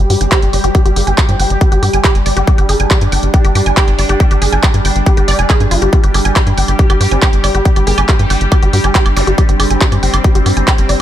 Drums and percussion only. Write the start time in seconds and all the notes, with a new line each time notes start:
0.10 open hi-hat
0.21 closed hi-hat
0.32 kick, clap, closed hi-hat
0.42 closed hi-hat
0.53 open hi-hat
0.64 closed hi-hat
0.75 kick, closed hi-hat
0.86 closed hi-hat
0.96 open hi-hat
1.07 closed hi-hat
1.18 kick, clap, closed hi-hat
1.29 closed hi-hat
1.40 open hi-hat
1.50 closed hi-hat
1.61 kick, closed hi-hat
1.72 closed hi-hat
1.83 open hi-hat
1.94 closed hi-hat
2.04 kick, clap, closed hi-hat
2.15 closed hi-hat
2.26 open hi-hat
2.37 closed hi-hat
2.47 kick, closed hi-hat
2.58 closed hi-hat
2.69 open hi-hat
2.80 closed hi-hat
2.91 kick, clap, closed hi-hat
3.01 closed hi-hat
3.12 open hi-hat
3.23 closed hi-hat
3.34 kick, closed hi-hat
3.45 closed hi-hat
3.55 open hi-hat
3.66 closed hi-hat
3.77 kick, clap, closed hi-hat
3.88 closed hi-hat
3.99 open hi-hat
4.09 closed hi-hat
4.20 kick, closed hi-hat
4.31 closed hi-hat
4.42 open hi-hat
4.52 closed hi-hat
4.63 kick, clap, closed hi-hat
4.74 closed hi-hat
4.85 open hi-hat
4.96 closed hi-hat
5.06 kick, closed hi-hat
5.17 closed hi-hat
5.28 open hi-hat
5.39 closed hi-hat
5.50 kick, clap, closed hi-hat
5.60 closed hi-hat
5.71 open hi-hat
5.82 closed hi-hat
5.93 kick, closed hi-hat
6.04 closed hi-hat
6.14 open hi-hat, high woodblock
6.25 closed hi-hat
6.36 kick, clap, closed hi-hat, high woodblock
6.47 closed hi-hat
6.58 open hi-hat
6.68 closed hi-hat, high woodblock
6.79 kick, closed hi-hat
6.90 closed hi-hat, high woodblock
7.01 open hi-hat
7.11 closed hi-hat
7.22 kick, clap, closed hi-hat, high woodblock
7.33 closed hi-hat
7.44 open hi-hat, high woodblock
7.55 closed hi-hat
7.65 kick, closed hi-hat
7.76 closed hi-hat, high woodblock
7.87 open hi-hat
7.98 closed hi-hat, high woodblock
8.09 kick, clap, closed hi-hat
8.19 closed hi-hat
8.30 open hi-hat, high woodblock
8.41 closed hi-hat
8.52 kick, closed hi-hat, high woodblock
8.63 closed hi-hat
8.73 open hi-hat
8.84 closed hi-hat, high woodblock
8.95 kick, clap, closed hi-hat
9.06 closed hi-hat, high woodblock
9.17 open hi-hat
9.27 closed hi-hat
9.38 kick, closed hi-hat, high woodblock
9.49 closed hi-hat
9.60 open hi-hat, high woodblock
9.70 closed hi-hat
9.81 kick, clap, closed hi-hat
9.92 closed hi-hat, high woodblock
10.03 open hi-hat
10.14 closed hi-hat, high woodblock
10.24 kick, closed hi-hat
10.35 closed hi-hat
10.46 open hi-hat, high woodblock
10.57 closed hi-hat
10.68 kick, clap, closed hi-hat, high woodblock
10.78 closed hi-hat
10.89 open hi-hat